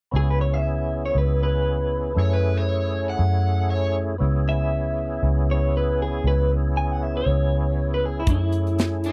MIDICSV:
0, 0, Header, 1, 6, 480
1, 0, Start_track
1, 0, Key_signature, 4, "minor"
1, 0, Tempo, 508906
1, 121, Time_signature, 4, 2, 24, 8
1, 8605, End_track
2, 0, Start_track
2, 0, Title_t, "Electric slide guitar"
2, 0, Program_c, 0, 29
2, 2070, Note_on_c, 0, 73, 84
2, 2184, Note_off_c, 0, 73, 0
2, 2201, Note_on_c, 0, 71, 69
2, 2421, Note_off_c, 0, 71, 0
2, 2428, Note_on_c, 0, 73, 72
2, 2887, Note_off_c, 0, 73, 0
2, 2919, Note_on_c, 0, 78, 67
2, 3478, Note_off_c, 0, 78, 0
2, 3494, Note_on_c, 0, 73, 79
2, 3721, Note_off_c, 0, 73, 0
2, 8544, Note_on_c, 0, 64, 73
2, 8605, Note_off_c, 0, 64, 0
2, 8605, End_track
3, 0, Start_track
3, 0, Title_t, "Clean electric guitar"
3, 0, Program_c, 1, 27
3, 154, Note_on_c, 1, 68, 92
3, 266, Note_off_c, 1, 68, 0
3, 287, Note_on_c, 1, 71, 67
3, 375, Note_off_c, 1, 71, 0
3, 389, Note_on_c, 1, 73, 73
3, 506, Note_off_c, 1, 73, 0
3, 506, Note_on_c, 1, 76, 79
3, 965, Note_off_c, 1, 76, 0
3, 996, Note_on_c, 1, 73, 77
3, 1089, Note_off_c, 1, 73, 0
3, 1112, Note_on_c, 1, 71, 69
3, 1330, Note_off_c, 1, 71, 0
3, 1351, Note_on_c, 1, 71, 76
3, 2740, Note_off_c, 1, 71, 0
3, 4232, Note_on_c, 1, 76, 93
3, 5150, Note_off_c, 1, 76, 0
3, 5200, Note_on_c, 1, 73, 78
3, 5415, Note_off_c, 1, 73, 0
3, 5442, Note_on_c, 1, 71, 78
3, 5656, Note_off_c, 1, 71, 0
3, 5681, Note_on_c, 1, 68, 68
3, 5896, Note_off_c, 1, 68, 0
3, 5918, Note_on_c, 1, 71, 92
3, 6135, Note_off_c, 1, 71, 0
3, 6387, Note_on_c, 1, 80, 79
3, 6526, Note_off_c, 1, 80, 0
3, 6526, Note_on_c, 1, 78, 73
3, 6630, Note_off_c, 1, 78, 0
3, 6630, Note_on_c, 1, 76, 69
3, 6745, Note_off_c, 1, 76, 0
3, 6762, Note_on_c, 1, 73, 80
3, 7447, Note_off_c, 1, 73, 0
3, 7490, Note_on_c, 1, 71, 74
3, 7598, Note_off_c, 1, 71, 0
3, 7598, Note_on_c, 1, 68, 70
3, 7709, Note_off_c, 1, 68, 0
3, 7731, Note_on_c, 1, 64, 71
3, 7819, Note_off_c, 1, 64, 0
3, 7829, Note_on_c, 1, 64, 89
3, 8605, Note_off_c, 1, 64, 0
3, 8605, End_track
4, 0, Start_track
4, 0, Title_t, "Tonewheel organ"
4, 0, Program_c, 2, 16
4, 108, Note_on_c, 2, 59, 61
4, 113, Note_on_c, 2, 61, 60
4, 127, Note_on_c, 2, 64, 58
4, 139, Note_on_c, 2, 68, 66
4, 1998, Note_off_c, 2, 59, 0
4, 2001, Note_off_c, 2, 61, 0
4, 2007, Note_off_c, 2, 64, 0
4, 2013, Note_off_c, 2, 68, 0
4, 2023, Note_on_c, 2, 57, 76
4, 2034, Note_on_c, 2, 61, 70
4, 2047, Note_on_c, 2, 64, 70
4, 2057, Note_on_c, 2, 68, 77
4, 3916, Note_off_c, 2, 57, 0
4, 3921, Note_off_c, 2, 61, 0
4, 3928, Note_off_c, 2, 64, 0
4, 3933, Note_off_c, 2, 68, 0
4, 3945, Note_on_c, 2, 59, 78
4, 3957, Note_on_c, 2, 61, 70
4, 3964, Note_on_c, 2, 64, 73
4, 3977, Note_on_c, 2, 68, 81
4, 7757, Note_off_c, 2, 59, 0
4, 7762, Note_off_c, 2, 61, 0
4, 7766, Note_off_c, 2, 64, 0
4, 7772, Note_off_c, 2, 68, 0
4, 7789, Note_on_c, 2, 57, 62
4, 7805, Note_on_c, 2, 61, 62
4, 7815, Note_on_c, 2, 64, 56
4, 7823, Note_on_c, 2, 68, 64
4, 8605, Note_off_c, 2, 57, 0
4, 8605, Note_off_c, 2, 61, 0
4, 8605, Note_off_c, 2, 64, 0
4, 8605, Note_off_c, 2, 68, 0
4, 8605, End_track
5, 0, Start_track
5, 0, Title_t, "Fingered electric bass"
5, 0, Program_c, 3, 33
5, 127, Note_on_c, 3, 37, 84
5, 1046, Note_off_c, 3, 37, 0
5, 1083, Note_on_c, 3, 37, 85
5, 2005, Note_off_c, 3, 37, 0
5, 2041, Note_on_c, 3, 42, 90
5, 2964, Note_off_c, 3, 42, 0
5, 3008, Note_on_c, 3, 42, 85
5, 3928, Note_off_c, 3, 42, 0
5, 3966, Note_on_c, 3, 37, 94
5, 4888, Note_off_c, 3, 37, 0
5, 4930, Note_on_c, 3, 37, 91
5, 5849, Note_off_c, 3, 37, 0
5, 5886, Note_on_c, 3, 37, 94
5, 6807, Note_off_c, 3, 37, 0
5, 6849, Note_on_c, 3, 37, 91
5, 7768, Note_off_c, 3, 37, 0
5, 7804, Note_on_c, 3, 42, 99
5, 8605, Note_off_c, 3, 42, 0
5, 8605, End_track
6, 0, Start_track
6, 0, Title_t, "Drums"
6, 7798, Note_on_c, 9, 42, 78
6, 7801, Note_on_c, 9, 36, 103
6, 7893, Note_off_c, 9, 42, 0
6, 7895, Note_off_c, 9, 36, 0
6, 8041, Note_on_c, 9, 42, 57
6, 8135, Note_off_c, 9, 42, 0
6, 8176, Note_on_c, 9, 42, 31
6, 8271, Note_off_c, 9, 42, 0
6, 8287, Note_on_c, 9, 42, 63
6, 8297, Note_on_c, 9, 38, 92
6, 8381, Note_off_c, 9, 42, 0
6, 8391, Note_off_c, 9, 38, 0
6, 8525, Note_on_c, 9, 42, 61
6, 8605, Note_off_c, 9, 42, 0
6, 8605, End_track
0, 0, End_of_file